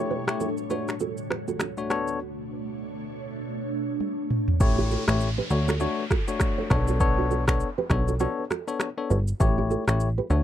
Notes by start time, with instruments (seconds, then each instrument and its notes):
Already playing: tine electric piano A3 E4 G4 C#5, ambient pad C#5
0.11 nylon-string guitar G4 B4
0.27 tine electric piano A3 E4 G4 C#5, finger snap, cross-stick, shaker
0.40 nylon-string guitar E4 A4, shaker
0.57 shaker
0.70 tine electric piano A3 D4 F#4 C#5, nylon-string guitar F#4 B4, shaker
0.88 finger snap, cross-stick, shaker
1.00 nylon-string guitar F#4 A4, shaker
1.17 shaker
1.30 nylon-string guitar G4 B4, finger snap, cross-stick
1.48 nylon-string guitar F#4 A4, shaker
1.59 nylon-string guitar D4 F#4, finger snap, cross-stick, shaker
1.77 tine electric piano A3 D4 F#4 C#5, shaker
1.90 ambient pad B2 A3 D4 C#5, tine electric piano B3 D4 A4 C#5, finger snap, cross-stick, shaker
2.08 shaker
4.00 high tom
4.30 mid tom
4.48 floor tom
4.60 analog synth bass A1, tine electric piano A3 E4 G4 C#5, kick, downlifter, shaker
4.78 nylon-string guitar E4 G4
4.91 nylon-string guitar F#4 A4, shaker
5.08 analog synth bass A1, tine electric piano A3 E4 G4 C#5, finger snap, cross-stick, shaker
5.20 shaker
5.38 nylon-string guitar G4 B4
5.50 analog synth bass D2, tine electric piano A3 D4 F#4 C#5, shaker
5.68 nylon-string guitar F#4 A4, finger snap, cross-stick, shaker
5.80 tine electric piano A3 D4 F#4 C#5, nylon-string guitar D4 F#4, shaker
6.11 nylon-string guitar F#4 A4, finger snap, kick, cross-stick, shaker
6.28 tine electric piano A3 D4 F#4 C#5, shaker
6.40 finger snap, kick, cross-stick, shaker
6.58 nylon-string guitar A4 C#5
6.70 analog synth bass B1, tine electric piano B3 D4 A4 C#5, finger snap, kick, cross-stick, shaker
6.88 nylon-string guitar F#4 A4, shaker
7.00 tine electric piano B3 D4 A4 C#5, kick, shaker
7.18 nylon-string guitar D4 F#4
7.31 nylon-string guitar F#4 A4, shaker
7.47 tine electric piano B3 D4 A4 C#5, finger snap, kick, cross-stick, shaker
7.60 shaker
7.78 nylon-string guitar G4 B4
7.90 analog synth bass B1, tine electric piano B3 D4 A4 C#5, finger snap, kick, cross-stick, shaker
8.08 nylon-string guitar F#4 A4, shaker
8.20 tine electric piano B3 D4 A4 C#5, nylon-string guitar D4 F#4, shaker
8.50 nylon-string guitar F#4 A4, finger snap, cross-stick, shaker
8.68 tine electric piano B3 D4 A4 C#5, shaker
8.80 finger snap, cross-stick, shaker
8.97 tine electric piano B3 D4 A4 C#5
9.10 analog synth bass G1, nylon-string guitar G4 B4, shaker
9.28 shaker
9.40 analog synth bass A1, tine electric piano A3 E4 G4 C#5, kick, shaker
9.58 nylon-string guitar E4 G4
9.70 nylon-string guitar F#4 A4, shaker
9.87 analog synth bass A1, tine electric piano A3 E4 G4 C#5, finger snap, cross-stick, shaker
10.00 shaker
10.18 nylon-string guitar G4 B4
10.30 analog synth bass D2, tine electric piano A3 D4 F#4 C#5, shaker